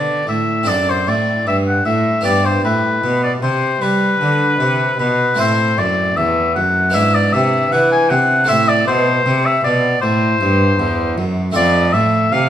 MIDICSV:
0, 0, Header, 1, 4, 480
1, 0, Start_track
1, 0, Tempo, 786370
1, 1376, Time_signature, 4, 2, 24, 8
1, 3769, Tempo, 769231
1, 7710, End_track
2, 0, Start_track
2, 0, Title_t, "Oboe"
2, 0, Program_c, 0, 68
2, 0, Note_on_c, 0, 74, 83
2, 170, Note_off_c, 0, 74, 0
2, 174, Note_on_c, 0, 76, 82
2, 415, Note_on_c, 0, 74, 92
2, 425, Note_off_c, 0, 76, 0
2, 546, Note_on_c, 0, 72, 81
2, 555, Note_off_c, 0, 74, 0
2, 661, Note_on_c, 0, 74, 82
2, 670, Note_off_c, 0, 72, 0
2, 895, Note_off_c, 0, 74, 0
2, 898, Note_on_c, 0, 76, 94
2, 952, Note_off_c, 0, 76, 0
2, 1022, Note_on_c, 0, 78, 78
2, 1126, Note_off_c, 0, 78, 0
2, 1130, Note_on_c, 0, 76, 81
2, 1368, Note_off_c, 0, 76, 0
2, 1371, Note_on_c, 0, 74, 94
2, 1494, Note_on_c, 0, 72, 84
2, 1503, Note_off_c, 0, 74, 0
2, 1611, Note_off_c, 0, 72, 0
2, 1614, Note_on_c, 0, 71, 81
2, 1965, Note_off_c, 0, 71, 0
2, 1975, Note_on_c, 0, 74, 81
2, 2028, Note_off_c, 0, 74, 0
2, 2089, Note_on_c, 0, 72, 82
2, 2328, Note_on_c, 0, 71, 90
2, 2337, Note_off_c, 0, 72, 0
2, 3047, Note_off_c, 0, 71, 0
2, 3051, Note_on_c, 0, 71, 87
2, 3292, Note_on_c, 0, 72, 97
2, 3301, Note_off_c, 0, 71, 0
2, 3528, Note_on_c, 0, 74, 88
2, 3537, Note_off_c, 0, 72, 0
2, 3763, Note_on_c, 0, 76, 95
2, 3772, Note_off_c, 0, 74, 0
2, 3999, Note_off_c, 0, 76, 0
2, 4003, Note_on_c, 0, 78, 91
2, 4245, Note_on_c, 0, 76, 103
2, 4255, Note_off_c, 0, 78, 0
2, 4374, Note_on_c, 0, 74, 92
2, 4383, Note_off_c, 0, 76, 0
2, 4489, Note_on_c, 0, 76, 94
2, 4498, Note_off_c, 0, 74, 0
2, 4732, Note_on_c, 0, 78, 105
2, 4742, Note_off_c, 0, 76, 0
2, 4851, Note_off_c, 0, 78, 0
2, 4855, Note_on_c, 0, 80, 95
2, 4966, Note_on_c, 0, 78, 101
2, 4976, Note_off_c, 0, 80, 0
2, 5210, Note_on_c, 0, 76, 112
2, 5219, Note_off_c, 0, 78, 0
2, 5335, Note_on_c, 0, 74, 103
2, 5344, Note_off_c, 0, 76, 0
2, 5447, Note_off_c, 0, 74, 0
2, 5450, Note_on_c, 0, 72, 98
2, 5814, Note_on_c, 0, 76, 96
2, 5823, Note_off_c, 0, 72, 0
2, 5926, Note_off_c, 0, 76, 0
2, 5930, Note_on_c, 0, 74, 94
2, 6158, Note_off_c, 0, 74, 0
2, 6162, Note_on_c, 0, 72, 98
2, 6869, Note_off_c, 0, 72, 0
2, 7128, Note_on_c, 0, 74, 106
2, 7360, Note_on_c, 0, 76, 91
2, 7369, Note_off_c, 0, 74, 0
2, 7606, Note_on_c, 0, 77, 108
2, 7615, Note_off_c, 0, 76, 0
2, 7710, Note_off_c, 0, 77, 0
2, 7710, End_track
3, 0, Start_track
3, 0, Title_t, "Harpsichord"
3, 0, Program_c, 1, 6
3, 0, Note_on_c, 1, 50, 50
3, 0, Note_on_c, 1, 59, 44
3, 0, Note_on_c, 1, 62, 45
3, 0, Note_on_c, 1, 67, 44
3, 135, Note_off_c, 1, 59, 0
3, 141, Note_off_c, 1, 62, 0
3, 146, Note_off_c, 1, 50, 0
3, 166, Note_on_c, 1, 45, 51
3, 387, Note_off_c, 1, 67, 0
3, 387, Note_on_c, 1, 60, 49
3, 388, Note_off_c, 1, 45, 0
3, 395, Note_on_c, 1, 62, 49
3, 404, Note_on_c, 1, 69, 51
3, 415, Note_on_c, 1, 42, 56
3, 633, Note_off_c, 1, 42, 0
3, 655, Note_on_c, 1, 45, 50
3, 869, Note_off_c, 1, 60, 0
3, 873, Note_off_c, 1, 45, 0
3, 898, Note_on_c, 1, 43, 53
3, 1113, Note_off_c, 1, 43, 0
3, 1133, Note_on_c, 1, 45, 55
3, 1342, Note_off_c, 1, 62, 0
3, 1346, Note_off_c, 1, 69, 0
3, 1349, Note_on_c, 1, 59, 48
3, 1350, Note_off_c, 1, 45, 0
3, 1358, Note_on_c, 1, 62, 47
3, 1368, Note_on_c, 1, 67, 46
3, 1375, Note_on_c, 1, 43, 52
3, 1591, Note_off_c, 1, 43, 0
3, 1594, Note_off_c, 1, 59, 0
3, 1599, Note_off_c, 1, 62, 0
3, 1617, Note_on_c, 1, 45, 61
3, 1830, Note_off_c, 1, 45, 0
3, 1854, Note_on_c, 1, 47, 53
3, 2068, Note_off_c, 1, 47, 0
3, 2091, Note_on_c, 1, 48, 57
3, 2306, Note_off_c, 1, 48, 0
3, 2330, Note_on_c, 1, 55, 57
3, 2546, Note_off_c, 1, 55, 0
3, 2570, Note_on_c, 1, 50, 54
3, 2787, Note_off_c, 1, 50, 0
3, 2811, Note_on_c, 1, 48, 58
3, 3028, Note_off_c, 1, 48, 0
3, 3049, Note_on_c, 1, 47, 56
3, 3263, Note_on_c, 1, 57, 47
3, 3265, Note_off_c, 1, 67, 0
3, 3268, Note_off_c, 1, 47, 0
3, 3271, Note_on_c, 1, 60, 49
3, 3281, Note_on_c, 1, 64, 49
3, 3290, Note_on_c, 1, 45, 54
3, 3507, Note_off_c, 1, 45, 0
3, 3530, Note_on_c, 1, 42, 61
3, 3745, Note_off_c, 1, 42, 0
3, 3768, Note_on_c, 1, 40, 58
3, 3986, Note_off_c, 1, 40, 0
3, 4012, Note_on_c, 1, 42, 57
3, 4213, Note_off_c, 1, 57, 0
3, 4217, Note_off_c, 1, 60, 0
3, 4221, Note_on_c, 1, 59, 56
3, 4222, Note_off_c, 1, 64, 0
3, 4229, Note_off_c, 1, 42, 0
3, 4231, Note_on_c, 1, 62, 58
3, 4240, Note_on_c, 1, 64, 57
3, 4249, Note_on_c, 1, 44, 66
3, 4468, Note_off_c, 1, 44, 0
3, 4497, Note_on_c, 1, 48, 57
3, 4713, Note_off_c, 1, 48, 0
3, 4736, Note_on_c, 1, 52, 59
3, 4953, Note_off_c, 1, 52, 0
3, 4973, Note_on_c, 1, 48, 63
3, 5175, Note_off_c, 1, 59, 0
3, 5180, Note_off_c, 1, 62, 0
3, 5185, Note_off_c, 1, 64, 0
3, 5186, Note_on_c, 1, 57, 54
3, 5190, Note_off_c, 1, 48, 0
3, 5196, Note_on_c, 1, 60, 53
3, 5205, Note_on_c, 1, 64, 49
3, 5214, Note_on_c, 1, 45, 58
3, 5430, Note_off_c, 1, 45, 0
3, 5456, Note_on_c, 1, 47, 68
3, 5671, Note_off_c, 1, 47, 0
3, 5693, Note_on_c, 1, 48, 60
3, 5911, Note_off_c, 1, 48, 0
3, 5935, Note_on_c, 1, 47, 64
3, 6152, Note_off_c, 1, 47, 0
3, 6174, Note_on_c, 1, 45, 64
3, 6390, Note_off_c, 1, 45, 0
3, 6410, Note_on_c, 1, 43, 64
3, 6626, Note_off_c, 1, 43, 0
3, 6652, Note_on_c, 1, 40, 66
3, 6866, Note_off_c, 1, 40, 0
3, 6891, Note_on_c, 1, 42, 60
3, 7090, Note_off_c, 1, 57, 0
3, 7095, Note_off_c, 1, 60, 0
3, 7100, Note_off_c, 1, 64, 0
3, 7103, Note_on_c, 1, 57, 56
3, 7106, Note_off_c, 1, 42, 0
3, 7111, Note_on_c, 1, 60, 55
3, 7122, Note_on_c, 1, 65, 54
3, 7130, Note_on_c, 1, 41, 60
3, 7346, Note_off_c, 1, 41, 0
3, 7366, Note_on_c, 1, 45, 64
3, 7583, Note_off_c, 1, 45, 0
3, 7607, Note_on_c, 1, 48, 65
3, 7710, Note_off_c, 1, 48, 0
3, 7710, Note_off_c, 1, 57, 0
3, 7710, Note_off_c, 1, 60, 0
3, 7710, Note_off_c, 1, 65, 0
3, 7710, End_track
4, 0, Start_track
4, 0, Title_t, "Cello"
4, 0, Program_c, 2, 42
4, 0, Note_on_c, 2, 50, 64
4, 172, Note_off_c, 2, 50, 0
4, 174, Note_on_c, 2, 45, 59
4, 414, Note_on_c, 2, 42, 62
4, 423, Note_off_c, 2, 45, 0
4, 658, Note_on_c, 2, 45, 65
4, 668, Note_off_c, 2, 42, 0
4, 893, Note_off_c, 2, 45, 0
4, 897, Note_on_c, 2, 43, 64
4, 1132, Note_off_c, 2, 43, 0
4, 1136, Note_on_c, 2, 45, 65
4, 1372, Note_off_c, 2, 45, 0
4, 1376, Note_on_c, 2, 43, 71
4, 1610, Note_off_c, 2, 43, 0
4, 1613, Note_on_c, 2, 45, 59
4, 1845, Note_off_c, 2, 45, 0
4, 1848, Note_on_c, 2, 47, 65
4, 2082, Note_off_c, 2, 47, 0
4, 2086, Note_on_c, 2, 48, 62
4, 2323, Note_off_c, 2, 48, 0
4, 2326, Note_on_c, 2, 55, 64
4, 2563, Note_off_c, 2, 55, 0
4, 2568, Note_on_c, 2, 50, 68
4, 2800, Note_off_c, 2, 50, 0
4, 2804, Note_on_c, 2, 48, 70
4, 3044, Note_off_c, 2, 48, 0
4, 3047, Note_on_c, 2, 47, 70
4, 3286, Note_off_c, 2, 47, 0
4, 3291, Note_on_c, 2, 45, 75
4, 3531, Note_on_c, 2, 42, 66
4, 3541, Note_off_c, 2, 45, 0
4, 3766, Note_off_c, 2, 42, 0
4, 3769, Note_on_c, 2, 40, 70
4, 4012, Note_on_c, 2, 42, 68
4, 4022, Note_off_c, 2, 40, 0
4, 4250, Note_on_c, 2, 44, 71
4, 4260, Note_off_c, 2, 42, 0
4, 4489, Note_off_c, 2, 44, 0
4, 4493, Note_on_c, 2, 48, 75
4, 4730, Note_off_c, 2, 48, 0
4, 4733, Note_on_c, 2, 52, 73
4, 4974, Note_on_c, 2, 48, 70
4, 4983, Note_off_c, 2, 52, 0
4, 5213, Note_on_c, 2, 45, 76
4, 5223, Note_off_c, 2, 48, 0
4, 5450, Note_off_c, 2, 45, 0
4, 5454, Note_on_c, 2, 47, 71
4, 5689, Note_off_c, 2, 47, 0
4, 5694, Note_on_c, 2, 48, 77
4, 5930, Note_off_c, 2, 48, 0
4, 5936, Note_on_c, 2, 47, 72
4, 6171, Note_off_c, 2, 47, 0
4, 6176, Note_on_c, 2, 45, 76
4, 6410, Note_off_c, 2, 45, 0
4, 6414, Note_on_c, 2, 43, 81
4, 6648, Note_off_c, 2, 43, 0
4, 6653, Note_on_c, 2, 40, 78
4, 6886, Note_on_c, 2, 42, 75
4, 6895, Note_off_c, 2, 40, 0
4, 7124, Note_off_c, 2, 42, 0
4, 7128, Note_on_c, 2, 41, 85
4, 7369, Note_on_c, 2, 45, 75
4, 7379, Note_off_c, 2, 41, 0
4, 7606, Note_off_c, 2, 45, 0
4, 7610, Note_on_c, 2, 48, 82
4, 7710, Note_off_c, 2, 48, 0
4, 7710, End_track
0, 0, End_of_file